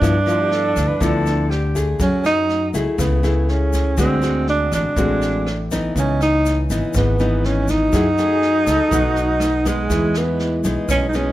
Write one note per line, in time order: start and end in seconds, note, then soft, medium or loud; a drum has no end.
0.00 0.72 G2 medium
0.00 0.98 G2 medium
0.00 0.16 F3 medium
0.00 0.17 B3 medium
0.00 1.76 D4 loud
0.00 0.17 E4 medium
0.00 kick medium
0.00 cross-stick medium
0.00 snare soft
0.00 shaker medium
0.26 0.97 F3 medium
0.26 0.97 B3 medium
0.26 0.97 E4 medium
0.26 0.41 F4 medium
0.26 snare soft
0.26 shaker soft
0.40 0.53 G4 medium
0.51 0.89 A4 medium
0.51 snare soft
0.76 0.88 D2 medium
0.76 kick soft
0.76 cross-stick medium
0.76 snare soft
0.76 shaker medium
0.88 1.03 B4 loud
1.00 1.96 D2 medium
1.00 1.97 D3 medium
1.00 1.50 F3 medium
1.00 1.50 B3 medium
1.00 1.50 E4 medium
1.00 1.51 A4 loud
1.00 kick medium
1.00 snare soft
1.00 shaker medium
1.26 snare soft
1.26 shaker soft
1.50 1.87 G4 medium
1.50 cross-stick medium
1.50 snare soft
1.75 2.70 A3 medium
1.75 2.70 G#4 medium
1.75 kick soft
1.75 snare soft
1.75 shaker medium
2.00 2.70 F#2 medium
2.00 2.96 F#3 medium
2.00 2.24 C#4 medium
2.00 kick medium
2.00 snare soft
2.00 shaker medium
2.24 2.71 D#4 loud
2.24 cross-stick medium
2.24 snare soft
2.24 shaker soft
2.49 snare soft
2.74 2.85 C#2 medium
2.74 3.19 A3 medium
2.74 3.20 E4 medium
2.74 3.20 G#4 medium
2.74 kick soft
2.74 snare soft
2.74 shaker medium
2.98 3.93 C#2 medium
2.98 3.95 C#3 medium
2.98 3.52 B3 medium
2.98 kick medium
2.98 cross-stick medium
2.98 snare soft
2.98 shaker medium
3.23 3.96 A3 medium
3.23 3.96 E4 medium
3.23 3.96 G#4 medium
3.23 snare soft
3.23 shaker soft
3.49 3.99 C#4 medium
3.49 snare soft
3.73 kick soft
3.73 snare soft
3.73 shaker medium
3.97 4.68 D2 medium
3.97 4.94 D3 medium
3.97 4.18 G#3 medium
3.97 4.19 C4 medium
3.97 4.45 C4 loud
3.97 4.19 F#4 medium
3.97 kick medium
3.97 cross-stick medium
3.97 snare soft
3.97 shaker medium
4.22 4.92 G#3 medium
4.22 4.92 C4 soft
4.22 4.93 F#4 medium
4.22 snare soft
4.22 shaker soft
4.47 4.71 D4 loud
4.47 snare soft
4.72 4.83 A1 medium
4.72 5.68 D4 medium
4.72 kick soft
4.72 cross-stick medium
4.72 snare soft
4.72 shaker medium
4.96 5.91 A1 medium
4.96 5.93 A2 medium
4.96 5.46 G#3 medium
4.96 5.46 C4 medium
4.96 5.47 F#4 medium
4.96 kick medium
4.96 snare soft
4.96 shaker medium
5.21 snare soft
5.21 shaker soft
5.46 cross-stick medium
5.46 snare soft
5.71 6.66 E3 medium
5.71 6.66 B3 medium
5.71 6.66 D#4 medium
5.71 kick soft
5.71 snare soft
5.71 shaker medium
5.93 6.66 C#2 medium
5.93 6.93 C#3 medium
5.93 7.89 B4 soft
5.93 7.88 D#5 soft
5.93 kick medium
5.93 snare soft
5.93 shaker medium
5.98 6.20 C#4 medium
5.98 7.90 C#5 soft
5.98 7.91 G#5 soft
6.21 6.67 D#4 loud
6.21 cross-stick medium
6.21 snare soft
6.21 shaker soft
6.45 snare soft
6.45 shaker medium
6.70 6.81 G#1 medium
6.70 7.15 E3 medium
6.70 7.15 B3 medium
6.70 7.16 D#4 medium
6.70 kick soft
6.70 snare soft
6.70 shaker medium
6.94 7.89 G#1 medium
6.94 7.91 G#2 medium
6.94 7.48 B3 medium
6.94 kick medium
6.94 cross-stick medium
6.94 snare soft
6.94 shaker medium
7.19 7.92 E3 medium
7.19 7.92 B3 medium
7.19 7.92 D#4 medium
7.19 snare soft
7.19 shaker soft
7.44 7.72 C#4 loud
7.44 snare soft
7.68 9.70 D#4 loud
7.68 kick soft
7.68 snare soft
7.68 shaker medium
7.90 8.63 F#2 medium
7.90 8.89 F#3 medium
7.90 8.08 A3 medium
7.90 8.08 E4 medium
7.90 8.88 F#4 soft
7.90 8.89 G#4 soft
7.90 8.08 G#4 medium
7.90 kick medium
7.90 cross-stick medium
7.90 snare soft
7.90 shaker medium
7.96 8.91 F#5 soft
8.17 8.88 A3 medium
8.17 8.68 G#4 loud
8.17 8.88 G#4 medium
8.17 snare soft
8.17 shaker soft
8.42 snare soft
8.67 8.78 C#2 medium
8.67 8.93 A4 medium
8.67 kick soft
8.67 cross-stick medium
8.67 snare soft
8.67 shaker medium
8.89 9.86 B1 medium
8.89 9.88 B2 medium
8.89 9.41 F#3 medium
8.89 9.41 A3 medium
8.89 9.87 D#4 medium
8.89 9.53 F#4 medium
8.89 9.88 A4 medium
8.89 9.89 B4 medium
8.89 kick medium
8.89 snare soft
8.89 shaker medium
8.93 9.41 D#4 medium
8.93 9.90 F#5 medium
9.15 snare soft
9.15 shaker soft
9.40 cross-stick medium
9.40 snare soft
9.40 shaker medium
9.65 10.60 G#3 medium
9.65 10.19 G#3 medium
9.65 10.60 B3 medium
9.65 10.61 D#4 medium
9.65 kick soft
9.65 snare soft
9.65 shaker medium
9.88 10.60 E2 medium
9.88 10.86 E3 medium
9.88 11.32 G#4 soft
9.88 11.32 B4 soft
9.88 11.32 D#5 soft
9.88 kick medium
9.88 snare soft
9.88 shaker medium
9.94 11.32 E4 soft
10.14 10.66 B3 medium
10.14 cross-stick medium
10.14 snare soft
10.14 shaker soft
10.39 snare soft
10.64 10.75 B1 medium
10.64 11.10 G#3 medium
10.64 11.10 B3 medium
10.64 11.10 D#4 medium
10.64 kick soft
10.64 snare soft
10.64 shaker medium
10.89 11.32 B1 medium
10.89 11.32 B2 medium
10.89 11.06 C#4 loud
10.89 kick medium
10.89 cross-stick medium
10.89 snare soft
10.89 shaker medium
11.09 11.18 D#4 medium
11.13 11.32 G#3 medium
11.13 11.32 B3 medium
11.13 11.32 C#4 medium
11.13 11.32 D#4 medium
11.13 snare soft
11.13 shaker soft